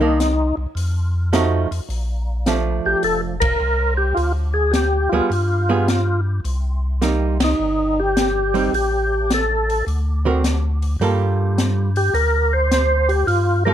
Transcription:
Already playing: tonewheel organ C2 D#4
0.01 hollow-body jazz guitar D#3 A#3 D4
0.20 snare, closed hi-hat
0.57 tonewheel organ C2
0.75 tonewheel organ F2, open hi-hat
1.33 hollow-body jazz guitar F3 A3 D#4 F#4, snare, closed hi-hat
1.71 tonewheel organ F2, open hi-hat
1.89 tonewheel organ A#1, open hi-hat
2.46 hollow-body jazz guitar F3 A3 D4, snare, closed hi-hat
2.86 tonewheel organ A#1 G4
3.03 tonewheel organ F1 A4, open hi-hat
3.40 tonewheel organ A#4, kick, ride
3.60 tonewheel organ C2
3.97 tonewheel organ G4
4.14 tonewheel organ D2 F4, open hi-hat
4.54 tonewheel organ G#4
4.71 tonewheel organ G4, snare, closed hi-hat
5.09 tonewheel organ D2 F4, hollow-body jazz guitar G3 B3
5.14 hollow-body jazz guitar F4 G#4
5.30 tonewheel organ G2, open hi-hat
5.69 hollow-body jazz guitar G3 B3 F4 G#4
5.88 snare, closed hi-hat
6.45 tonewheel organ C2, open hi-hat
7.01 hollow-body jazz guitar G3 A#3 D#4, snare, closed hi-hat
7.40 tonewheel organ D#4, snare, ride
7.59 tonewheel organ G1
8.00 tonewheel organ G4
8.17 snare, closed hi-hat
8.54 hollow-body jazz guitar G3 C4 D#4, open hi-hat
8.73 tonewheel organ A1 G4, open hi-hat
9.30 tonewheel organ A4, snare, closed hi-hat
9.70 open hi-hat
9.87 tonewheel organ D2, open hi-hat
10.25 hollow-body jazz guitar D3 C4 F#4 A#4
10.44 snare, closed hi-hat
10.82 open hi-hat
11.00 tonewheel organ G2, hollow-body jazz guitar G3 A#3 F4 A4, open hi-hat
11.58 snare, closed hi-hat
11.96 tonewheel organ G4, open hi-hat
12.14 tonewheel organ D2 A#4, open hi-hat
12.53 tonewheel organ C5
12.71 snare, closed hi-hat
13.09 tonewheel organ G4, open hi-hat
13.27 tonewheel organ G2 F4, open hi-hat
13.65 hollow-body jazz guitar G3 A#3 F4 A4, tonewheel organ A#4

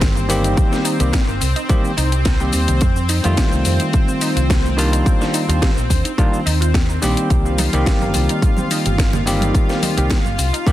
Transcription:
Already playing: fingered electric bass G1, tine electric piano D#3 G3 A#3 C4 G4, analog synth pad C4 C5
0.00 synth arpeggio sound A#4, kick, snare, closed hi-hat, shaker
0.15 synth arpeggio sound A#3, shaker
0.28 tine electric piano D#3 G3 A#3 C4 G4, synth arpeggio sound C4, open hi-hat, shaker
0.44 synth arpeggio sound D#4, closed hi-hat, shaker
0.57 synth arpeggio sound A#3, kick, closed hi-hat, shaker
0.71 synth arpeggio sound C4, snare, shaker
0.84 synth arpeggio sound D#4, open hi-hat, shaker
0.99 fingered electric bass C2, tine electric piano D#3 G3 A#3 C4 G4, synth arpeggio sound G4, closed hi-hat, shaker
1.12 synth arpeggio sound A#4, kick, snare, closed hi-hat, shaker
1.27 fingered electric bass G1, synth arpeggio sound A#3, shaker
1.40 fingered electric bass C2, synth arpeggio sound C4, open hi-hat, shaker
1.56 synth arpeggio sound D#4, closed hi-hat, shaker
1.69 tine electric piano D#3 G3 A#3 C4 G4, synth arpeggio sound A#3, kick, closed hi-hat, shaker
1.84 synth arpeggio sound C4, shaker
1.97 fingered electric bass C2, synth arpeggio sound D#4, open hi-hat, shaker
2.12 synth arpeggio sound G4, closed hi-hat, shaker
2.25 synth arpeggio sound A#4, kick, snare, closed hi-hat, shaker
2.40 tine electric piano D#3 G3 A#3 C4 G4, synth arpeggio sound A#3, shaker
2.53 fingered electric bass D#2, synth arpeggio sound C4, open hi-hat, shaker
2.68 fingered electric bass C2, synth arpeggio sound D#4, closed hi-hat, shaker
2.81 fingered electric bass F2, synth arpeggio sound A3, kick, closed hi-hat, shaker
2.96 synth arpeggio sound C4, shaker
3.09 synth arpeggio sound D#4, open hi-hat, shaker
3.24 fingered electric bass F2, tine electric piano D#3 G3 A3 C4 F4, synth arpeggio sound F4, closed hi-hat, shaker
3.37 synth arpeggio sound G4, kick, snare, closed hi-hat, shaker
3.52 fingered electric bass C2, synth arpeggio sound A3, shaker
3.65 fingered electric bass F2, synth arpeggio sound C4, open hi-hat, shaker
3.80 synth arpeggio sound D#4, closed hi-hat, shaker
3.93 synth arpeggio sound A3, kick, closed hi-hat, shaker
4.08 synth arpeggio sound C4, shaker
4.21 synth arpeggio sound D#4, open hi-hat, shaker
4.36 fingered electric bass C2, synth arpeggio sound F4, closed hi-hat, shaker
4.50 synth arpeggio sound G4, kick, snare, closed hi-hat, shaker
4.64 synth arpeggio sound A3, shaker
4.77 tine electric piano D#3 G3 A#3 D4 F4, synth arpeggio sound C4, open hi-hat, shaker
4.92 synth arpeggio sound D#4, closed hi-hat, shaker
5.06 synth arpeggio sound A#3, kick, closed hi-hat, shaker
5.20 synth arpeggio sound D4, snare, shaker
5.34 synth arpeggio sound D#4, open hi-hat, shaker
5.48 fingered electric bass D#2, tine electric piano D#3 G3 A#3 D4 F4, synth arpeggio sound F4, closed hi-hat, shaker
5.62 synth arpeggio sound G4, kick, snare, closed hi-hat, shaker
5.76 fingered electric bass A#1, synth arpeggio sound A#3, shaker
5.90 fingered electric bass D#2, synth arpeggio sound D4, kick, open hi-hat, shaker
6.05 synth arpeggio sound D#4, closed hi-hat, shaker
6.18 tine electric piano D#3 G3 A#3 D4 F4, synth arpeggio sound A#3, kick, closed hi-hat, shaker
6.33 synth arpeggio sound D4, shaker
6.46 fingered electric bass D#2, synth arpeggio sound D#4, open hi-hat, shaker
6.61 synth arpeggio sound F4, closed hi-hat, shaker
6.74 synth arpeggio sound G4, kick, snare, closed hi-hat, shaker
6.89 synth arpeggio sound A#3, shaker
7.01 fingered electric bass A#1, tine electric piano D#3 G3 A#3 C4 G4, synth arpeggio sound D4, open hi-hat, shaker
7.17 synth arpeggio sound D#4, closed hi-hat, shaker
7.30 fingered electric bass C2, synth arpeggio sound A#3, analog synth pad F4 F5, kick, closed hi-hat, shaker
7.45 synth arpeggio sound C4, shaker
7.58 synth arpeggio sound D#4, open hi-hat, high conga, shaker
7.73 fingered electric bass C2, tine electric piano D#3 G3 A#3 C4 G4, synth arpeggio sound G4, closed hi-hat, muted conga, shaker
7.86 synth arpeggio sound A#4, kick, snare, closed hi-hat, shaker
8.01 fingered electric bass G1, synth arpeggio sound A#3, high conga, shaker
8.14 fingered electric bass C2, synth arpeggio sound C4, open hi-hat, muted conga, shaker
8.29 synth arpeggio sound D#4, closed hi-hat, shaker
8.42 synth arpeggio sound A#3, kick, closed hi-hat, shaker
8.57 synth arpeggio sound C4, high conga, shaker
8.71 synth arpeggio sound D#4, open hi-hat, muted conga, shaker
8.86 fingered electric bass G1, synth arpeggio sound G4, closed hi-hat, shaker
8.98 synth arpeggio sound A#4, kick, snare, closed hi-hat, high conga, shaker
9.13 synth arpeggio sound A#3, muted conga, low conga, shaker
9.26 tine electric piano D#3 G3 A#3 C4 G4, synth arpeggio sound C4, open hi-hat, shaker
9.41 synth arpeggio sound D#4, closed hi-hat, high conga, shaker
9.55 synth arpeggio sound A#3, kick, closed hi-hat, shaker
9.69 synth arpeggio sound C4, snare, muted conga, shaker
9.83 synth arpeggio sound D#4, open hi-hat, high conga, shaker
9.97 fingered electric bass C2, tine electric piano D#3 G3 A#3 C4 G4, synth arpeggio sound G4, closed hi-hat, shaker
10.10 synth arpeggio sound A#4, kick, snare, closed hi-hat, muted conga, shaker
10.25 fingered electric bass G1, synth arpeggio sound A#3, high conga, shaker
10.38 fingered electric bass C2, synth arpeggio sound C4, open hi-hat, shaker
10.53 synth arpeggio sound D#4, closed hi-hat, shaker
10.67 tine electric piano D#3 G3 A#3 C4 G4, synth arpeggio sound A#3, kick, closed hi-hat, muted conga, shaker

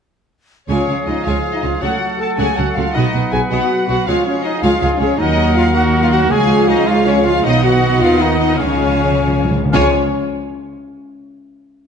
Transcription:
0.68 double bass section C#2, cello section C#3, timpani C#3, trombone section F3 G#3, viola section G#3 F4, clarinet C#4, french horn section C#4, trumpet C#4, oboe G#4, violin section C#5 G#5, flute section F5
0.86 double bass section C#2, cello section C#3, viola section G#3 F4, violin section G#4 F5
1.06 double bass section C#2, cello section C#3, viola section G#3 F4, clarinet D#4, trumpet D#4, french horn section D#4, violin section F4 C#5 D#5
1.25 double bass section C#2, cello section C#3, viola section G#3 F4, french horn section F4, clarinet F4, trumpet F4, violin section C#5 F5 G#5
1.54 clarinet D#4, french horn section D#4, trumpet D#4, violin section D#5
1.62 double bass section C#2, cello section C#3, viola section G#3 F4, clarinet F4, french horn section F4, violin section F4 C#5 F5, trumpet F4
1.81 double bass section C#2, cello section C#3, trombone section F#3 A3, viola section A3 F#4, clarinet F#4, french horn section F#4, trumpet F#4, oboe A4, violin section C#5 F#5
1.85 flute section F#5
2.19 clarinet A4, french horn section A4, trumpet A4, violin section A5
2.37 double bass section C#2, cello section C#3, viola section A3 F#4, clarinet G#4, french horn section G#4, trumpet G#4, violin section C#5 F#5 G#5
2.55 double bass section C#2, cello section C#3, viola section A3 F#4, clarinet F#4, french horn section F#4, trumpet F#4, violin section A4 C#5 F#5
2.75 double bass section C#2, cello section C#3, viola section A3 F#4, french horn section F4, clarinet F4, trumpet F4, violin section F#4 A4 F5
2.93 double bass section B1, cello section B2, trombone section B3, viola section B3 F#4, french horn section D#4, clarinet D#4, trumpet D#4, oboe B4, violin section D#5 F#5
3.13 double bass section B1, cello section B2, viola section B3 F#4, violin section B4 D#5
3.31 double bass section B1, cello section B2, viola section B3 F#4, violin section F#4 B4 G#5, french horn section G#4, clarinet G#4, trumpet G#4
3.50 double bass section B1, cello section B2, viola section B3 F#4, french horn section F#4, clarinet F#4, trumpet F#4, violin section D#5 F#5
3.87 double bass section B1, cello section B2, viola section B3 F#4, clarinet F#4, french horn section F#4, violin section F#4 B4 F#5, trumpet F#4
4.07 double bass section C#2, cello section C#2, trombone section F3 G#3, viola section G#3 G#4, clarinet F4, trumpet F4, french horn section F4, oboe G#4, violin section C#5 F5, flute section F5
4.26 trumpet C#4, clarinet C#4, french horn section C#4, violin section C#5
4.44 clarinet D#4, trumpet D#4, french horn section D#4, violin section D#5
4.63 cello section C#2, double bass section C#2, viola section G#3 G#4, french horn section F4, trumpet F4, clarinet F4, violin section C#5 F5
4.78 cello section C#2, double bass section C#2, viola section G#3 G#4, french horn section F4, clarinet F4, trumpet F4, violin section G#4 C#5 F5
4.96 double bass section C#2, french horn section C#4, violin section F4 G#4 C#5
5.00 cello section C#2, viola section G#3 G#4, clarinet C#4, trumpet C#4
5.17 double bass section D#2, cello section D#2, trombone section F#3 A#3, viola section F#3 D#4, french horn section D#4, clarinet D#4, trumpet D#4, violin section A#4 D#5 F#5, oboe A#4
5.22 flute section F#5
5.54 french horn section F4, clarinet F4, trumpet F4, violin section F5
5.72 trombone section F#3 A#3, viola section D#4, french horn section F#4, clarinet F#4, violin section A#4 F#5
5.76 viola section F#3, trumpet F#4
6.01 clarinet F4, french horn section F4, trumpet F4, violin section F5
6.12 clarinet F#4, french horn section F#4, trumpet F#4, violin section F#5
6.30 double bass section C#2, cello section C#2, trombone section F3 G#3, viola section G#3 F4, french horn section G#4, clarinet G#4, trumpet G#4, violin section C#5 F5 G#5, oboe C#5, flute section F5
6.69 trumpet D#4, clarinet D#4, french horn section D#4, violin section D#5
6.87 trombone section F3 G#3, viola section G#3 F4, trumpet F4, french horn section F4, clarinet F4, violin section C#5 F5
7.04 french horn section C#4, trumpet C#4, clarinet C#4, violin section C#5
7.23 french horn section F4, trumpet F4, clarinet F4, violin section F5
7.43 double bass section B1, cello section B2, trombone section D#3 B3, viola section B3 D#4, clarinet D#4, french horn section D#4, trumpet D#4, oboe D#5, violin section D#5 F#5, flute section F#5
7.62 french horn section F#4, trumpet F#4, clarinet F#4, violin section F#5
7.99 double bass section D#2, cello section D#3, french horn section F4, clarinet F4, trumpet F4, violin section F5
8.19 french horn section D#4, clarinet D#4, trumpet D#4, violin section D#5
8.38 french horn section D#4, clarinet D#4, trumpet D#4, violin section D#5
8.57 double bass section C#2, cello section C#3, trombone section F3 G#3, viola section G#3 F4, french horn section C#4, clarinet C#4, trumpet C#4, violin section C#5 F5, oboe F5, flute section G#5
8.67 timpani C#3
8.74 timpani C#3
8.81 timpani C#3
8.89 timpani C#3
8.96 timpani C#3
9.04 timpani C#3
9.12 timpani C#3
9.28 timpani C#3
9.36 timpani C#3
9.45 timpani C#3
9.51 timpani C#3
9.58 timpani C#3
9.65 timpani C#3
9.72 double bass section C#2, cello section C#3, timpani C#3, trombone section F3 G#3, french horn section C#4, viola section F4 G#4, clarinet C#5, violin section C#5 F5, trumpet C#5, oboe F5, flute section G#5

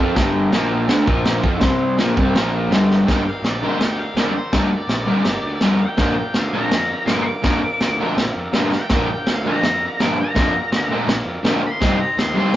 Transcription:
Already playing: overdriven electric guitar F3, transistor combo organ D4 G4 A#4
0.00 picked electric bass F2, overdriven electric guitar C4 F4
0.15 picked electric bass G1, overdriven electric guitar G2 D3 G3, kick, snare, crash
0.48 picked electric bass A#1, overdriven electric guitar A#2, transistor combo organ A#3 F4 A#4
0.52 overdriven electric guitar F3 A#3, snare, crash
0.88 picked electric bass D2, overdriven electric guitar D3 A3 D4, snare, crash
1.04 picked electric bass A#1, overdriven electric guitar A#2 F3 A#3, transistor combo organ A#3 F4 A#4, kick
1.25 snare, crash
1.43 picked electric bass F2, overdriven electric guitar F3 C4 F4, kick
1.58 overdriven electric guitar C3 G3 C4, transistor combo organ C4 G4 C5, snare, crash
1.62 picked electric bass C2, kick
1.98 picked electric bass A#1, overdriven electric guitar A#2 F3 A#3, transistor combo organ D4 G4 A#4, snare, crash
2.16 picked electric bass C2, overdriven electric guitar C3 G3 C4, kick
2.31 picked electric bass A#1, transistor combo organ A#3 F4 A#4
2.35 overdriven electric guitar A#2 F3 A#3, snare, crash
2.68 picked electric bass G1, overdriven electric guitar G2, transistor combo organ D4 G4 A#4
2.72 overdriven electric guitar D3 G3, snare, crash
2.91 snare
3.05 picked electric bass G1, overdriven electric guitar G2 D3 G3 A#3 D4 A#4, transistor combo organ D4 G4, kick, snare
3.09 transistor combo organ A#4, lead electric guitar G5, crash
3.28 lead electric guitar F5
3.42 picked electric bass A#1, lead electric guitar D5, snare, crash
3.62 overdriven electric guitar G2 D3 G3 A#3 D4 A#4, lead electric guitar C5
3.79 picked electric bass D2, lead electric guitar G5, snare, crash
3.99 lead electric guitar F5
4.15 picked electric bass F2, overdriven electric guitar G2 D3 G3 A#3 D4 A#4, lead electric guitar D5, snare, crash
4.35 lead electric guitar C5
4.53 picked electric bass D2, overdriven electric guitar G2 D3 G3 A#3 D4 A#4, lead electric guitar D5, kick, snare, crash
4.88 picked electric bass A#1, snare, crash
5.06 overdriven electric guitar G2 D3 G3 A#3 D4 A#4
5.25 picked electric bass G1, snare, crash
5.44 picked electric bass D2
5.61 picked electric bass F2, overdriven electric guitar G2 D3 G3 A#3, snare, crash
5.65 overdriven electric guitar D4 A#4
5.81 lead electric guitar G5
5.97 picked electric bass A#1, overdriven electric guitar A#2 D3 F3 A#3 D4 A#4, transistor combo organ D4 F4 A#4, kick, snare, crash
6.19 lead electric guitar G5
6.34 picked electric bass D2, lead electric guitar F5, snare, crash
6.53 overdriven electric guitar A#2 D3 F3 A#3 D4 A#4, lead electric guitar A#5
6.71 picked electric bass F2, snare, crash
7.06 picked electric bass G2, overdriven electric guitar A#2 D3 F3 A#3 D4 A#4, lead electric guitar D6, snare, crash
7.22 lead electric guitar D6
7.43 picked electric bass F2, overdriven electric guitar A#2 D3 F3 A#3 D4 A#4, kick, snare, crash
7.81 picked electric bass D2, snare, crash
8.00 overdriven electric guitar A#2 D3 F3 A#3 D4 A#4
8.17 picked electric bass A#1, snare, crash
8.36 picked electric bass F2
8.52 picked electric bass G2, overdriven electric guitar A#2 D3 F3 A#3 D4 A#4, snare, crash
8.72 lead electric guitar G5, snare
8.89 picked electric bass A#1, overdriven electric guitar A#2 D3 F3 A#3 D4, transistor combo organ D4 F4, kick, snare, crash
8.94 transistor combo organ A#4, overdriven electric guitar A#4
9.11 lead electric guitar G5
9.27 picked electric bass D2, snare, crash
9.32 lead electric guitar F5
9.45 overdriven electric guitar A#2 D3 F3 A#3 D4 A#4, lead electric guitar A#5
9.63 picked electric bass F2, snare, crash
10.00 picked electric bass G2, overdriven electric guitar A#2 D3 F3 A#3 D4 A#4, lead electric guitar D6, snare, crash
10.21 lead electric guitar A#5
10.35 picked electric bass F2, overdriven electric guitar A#2 D3 F3 A#3 D4 A#4, kick, snare, crash
10.72 picked electric bass D2, snare, crash
10.90 overdriven electric guitar A#2 D3 F3 A#3 D4 A#4
11.07 picked electric bass A#1, snare, crash
11.25 picked electric bass F2
11.42 picked electric bass D2, overdriven electric guitar A#2 D3 F3 A#3, snare, crash
11.46 overdriven electric guitar D4 A#4
11.67 lead electric guitar C6
11.78 picked electric bass C2, overdriven electric guitar C3 G3 C4 D#4, transistor combo organ D#4 G4 C5, kick, snare, crash
11.83 overdriven electric guitar G4
12.00 lead electric guitar A#5
12.17 picked electric bass D#2, lead electric guitar C6, snare, crash
12.34 overdriven electric guitar C3 G3 C4 D#4 G4, lead electric guitar C6
12.53 picked electric bass G2

